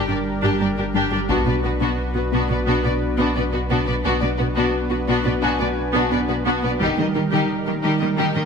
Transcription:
Already playing: sub bass G1, analog synth pad G3 D4 G4 A#4, grand piano C6
0.08 cello section G2, viola section D4 G4, synth arpeggio sound D4, violin section A#4 D5
0.43 cello section G2, synth arpeggio sound G3, viola section D4 G4, violin section D4 G4
0.60 cello section G2, synth arpeggio sound A#3, viola section D4 G4, violin section A#4 D5
0.77 cello section G2, viola section D4 G4, synth arpeggio sound G4, violin section G4 A#4
0.94 cello section G2, synth arpeggio sound G3, violin section D4 G4, viola section D4 G4
1.11 cello section G2, viola section D4 G4, synth arpeggio sound G4, violin section A#4 D5
1.29 sub bass B1, cello section B2, analog synth pad B3 D4 F#4 B4, synth arpeggio sound B3, viola section B3 F#4, violin section D4 F#4, grand piano A5, taiko
1.46 cello section B2, viola section B3 F#4, synth arpeggio sound D4, violin section B4 D5
1.64 cello section B2, viola section B3 F#4, violin section F#4 B4, synth arpeggio sound B4
1.80 cello section B2, viola section B3 F#4, synth arpeggio sound B3, violin section D4 F#4
2.15 cello section B2, viola section B3 F#4, synth arpeggio sound F#4, violin section F#4 B4
2.32 cello section B2, synth arpeggio sound B3, viola section B3 F#4, violin section D4 F#4
2.49 cello section B2, viola section B3 F#4, synth arpeggio sound F#4, violin section B4 D5
2.66 cello section B2, viola section B3 F#4, synth arpeggio sound B3, violin section D4 F#4
2.84 cello section B2, viola section B3 F#4, synth arpeggio sound F#4, violin section B4 D5
3.18 cello section B2, viola section B3 F#4, synth arpeggio sound B3, violin section D4 F#4
3.36 cello section B2, viola section B3 F#4, synth arpeggio sound D4, violin section B4 D5
3.52 cello section B2, viola section B3 F#4, violin section F#4 B4, synth arpeggio sound B4
3.69 cello section B2, viola section B3 F#4, synth arpeggio sound B3, violin section D4 F#4
3.87 cello section B2, viola section B3 F#4, violin section B4 D5, synth arpeggio sound B4
4.04 sub bass B1, cello section B2, viola section B3 F#4, synth arpeggio sound B3, analog synth pad B3 D4 F#4 B4, violin section D4 F#4
4.21 cello section B2, viola section B3 F#4, synth arpeggio sound D4, violin section B4 D5
4.37 cello section B2, viola section B3 F#4, violin section F#4 B4, synth arpeggio sound B4
4.56 cello section B2, viola section B3 F#4, synth arpeggio sound B3, violin section D4 F#4
4.90 cello section B2, viola section B3 F#4, violin section F#4 B4, synth arpeggio sound F#4
5.08 cello section B2, synth arpeggio sound B3, viola section B3 F#4, violin section D4 F#4
5.25 cello section B2, viola section B3 F#4, synth arpeggio sound F#4, violin section B4 D5
5.41 cello section B2, synth arpeggio sound B3, viola section B3 F#4, violin section D4 F#4, grand piano G#5
5.59 cello section B2, viola section B3 F#4, synth arpeggio sound F#4, violin section B4 D5
5.94 cello section B2, viola section B3 F#4, synth arpeggio sound B3, violin section D4 F#4
6.11 cello section B2, viola section B3 F#4, synth arpeggio sound D4, violin section B4 D5
6.28 cello section B2, viola section B3 F#4, violin section F#4 B4, synth arpeggio sound B4
6.45 cello section B2, viola section B3 F#4, synth arpeggio sound B3, violin section D4 F#4
6.63 cello section B2, viola section B3 F#4, violin section B4 D5, synth arpeggio sound B4
6.80 sub bass D#1, cello section D#3, synth arpeggio sound D#3, viola section G3 G4, analog synth pad G3 D#4 A#4, violin section D#4 G4, taiko
6.97 cello section D#3, viola section G3 G4, synth arpeggio sound G3, violin section A#4 D#5
7.14 cello section D#3, viola section G3 G4, synth arpeggio sound D#4, violin section G4 A#4
7.31 synth arpeggio sound D#3, cello section D#3, viola section G3 G4, violin section D#4 G4
7.66 cello section D#3, viola section G3 G4, synth arpeggio sound A#3, violin section G4 A#4
7.83 cello section D#3, synth arpeggio sound D#3, viola section G3 G4, violin section D#4 G4
8.00 cello section D#3, viola section G3 G4, synth arpeggio sound A#3, violin section A#4 D#5
8.17 cello section D#3, synth arpeggio sound D#3, viola section G3 G4, violin section D#4 G4
8.35 cello section D#3, viola section G3 G4, synth arpeggio sound A#3, violin section A#4 D#5

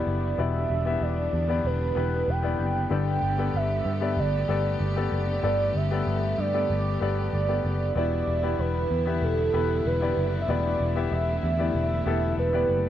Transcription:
Already playing: string section D3 G3 B3 E4, grand piano B3 E4 G4 D5 E5, soft synth lead D5
0.07 picked electric bass F#1
0.38 picked electric bass E1, grand piano B2 B3 E4 G4 D5, string section D4, soft synth lead E5
0.70 picked electric bass E1
0.85 grand piano B3 E4 G4 E5
1.01 picked electric bass E1, soft synth lead D5
1.33 picked electric bass E2
1.48 grand piano B3 E4 G4 D5
1.65 picked electric bass E1, soft synth lead B4
1.95 picked electric bass E1, grand piano B3 E4 G4 B4
2.28 picked electric bass E1, soft synth lead G5
2.43 grand piano B3 E4 G4 D5
2.59 picked electric bass F#1
2.90 picked electric bass G1, grand piano G2 D3 B3 G4 A4 D5, string section A3 G4, soft synth lead G5
3.22 picked electric bass G1
3.38 grand piano B3 G4 A4 D5
3.54 picked electric bass G1, soft synth lead E5
3.85 picked electric bass G2
4.01 grand piano B3 G4 A4 D5
4.17 picked electric bass G1, soft synth lead D5
4.48 picked electric bass G1, grand piano B3 G4 A4 D5
4.80 picked electric bass G1, soft synth lead D5
4.96 grand piano B3 G4 A4 D5
5.12 picked electric bass F#1
5.42 picked electric bass G1, grand piano G2 D3 B3 G4 A4 D5, soft synth lead D5
5.75 picked electric bass G1, soft synth lead E5
5.91 grand piano B3 G4 A4 D5
6.07 picked electric bass G1
6.38 picked electric bass G2, soft synth lead D5
6.54 grand piano B3 G4 A4 D5
6.70 picked electric bass G1
7.00 picked electric bass G1, grand piano B3 G4 A4 D5
7.33 picked electric bass G1, soft synth lead D5
7.48 grand piano B3 G4 A4 D5
7.65 picked electric bass F#1
7.96 picked electric bass E1, grand piano B2 B3 E4 G4 D5, string section D3 G3 E4, soft synth lead D5
8.28 picked electric bass E1
8.43 grand piano B3 E4 G4 D5
8.59 picked electric bass E1, soft synth lead B4
8.91 picked electric bass E2
9.06 grand piano B3 E4 G4 E5
9.23 picked electric bass E1, soft synth lead A4
9.53 picked electric bass E1, grand piano B3 E4 G4 B4
9.86 picked electric bass E1, soft synth lead B4
10.01 grand piano B3 E4 G4 D5
10.17 picked electric bass F#1
10.42 soft synth lead E5
10.48 picked electric bass E1, grand piano B2 B3 E4 G4 D5, string section A3, soft synth lead D5
10.80 picked electric bass E1
10.95 grand piano B3 E4 G4 E5
11.12 picked electric bass E1, soft synth lead E5
11.43 picked electric bass E2
11.58 grand piano B3 E4 G4 D5
11.75 picked electric bass E1, soft synth lead E5
12.06 picked electric bass E1, grand piano B3 E4 G4 A4
12.38 picked electric bass E1, soft synth lead B4
12.53 grand piano B3 E4 G4 D5
12.69 picked electric bass F#1

